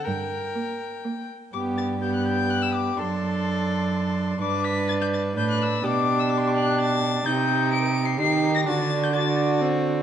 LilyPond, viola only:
\new Staff \with { instrumentName = "Viola" } { \time 3/4 \key g \minor \tempo 4 = 126 r4 bes4 bes4 | \key g \major b4 b2 | d'2. | d'2 d'4 |
d'2. | \key c \dorian ees'2 ees'4 | d'4 d'4 c'4 | }